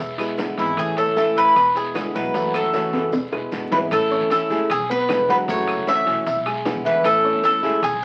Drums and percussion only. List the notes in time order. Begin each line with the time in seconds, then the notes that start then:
0.18 high bongo, high timbale, claves, maracas
0.38 high bongo, low bongo, low timbale, short guiro, maracas
0.58 high timbale, short guiro, maracas
0.77 high bongo, high timbale, long guiro, claves, maracas
0.97 high timbale, maracas
1.17 high bongo, low timbale, short guiro, maracas
1.36 short guiro, maracas
1.56 high bongo, high timbale, long guiro, claves, maracas
1.76 high timbale, maracas
1.95 high bongo, low bongo, high timbale, low timbale, short guiro, claves, maracas
2.15 short guiro, maracas
2.34 high bongo, high timbale, long guiro, maracas
2.54 high bongo, high timbale, claves, maracas
2.73 high bongo, low timbale, short guiro, maracas
2.93 high timbale, short guiro, maracas
3.13 high bongo, high timbale, long guiro, maracas
3.33 high bongo, claves
3.52 low bongo, short guiro, maracas
3.72 low bongo, low timbale, short guiro, maracas
3.91 high bongo, high timbale, long guiro, claves, maracas
4.11 high bongo, maracas
4.30 high bongo, high timbale, low timbale, short guiro, maracas
4.50 short guiro, maracas
4.70 high bongo, high timbale, long guiro, claves, maracas
4.90 high bongo, maracas
5.09 high bongo, low bongo, high timbale, low timbale, short guiro, claves, maracas
5.29 high bongo, short guiro, maracas
5.48 high bongo, high timbale, long guiro, maracas
5.67 high bongo, high timbale, claves, maracas
5.87 high bongo, low timbale, short guiro, maracas
6.07 high timbale, short guiro, maracas
6.26 high bongo, high timbale, long guiro, maracas
6.46 high bongo, high timbale, claves, maracas
6.65 high bongo, low bongo, high timbale, low timbale, short guiro, maracas
6.85 high bongo, short guiro, maracas
7.04 high bongo, high timbale, long guiro, claves, maracas
7.24 high bongo, maracas
7.43 high bongo, high timbale, low timbale, short guiro, maracas
7.63 short guiro, maracas
7.83 high bongo, high timbale, long guiro, claves, maracas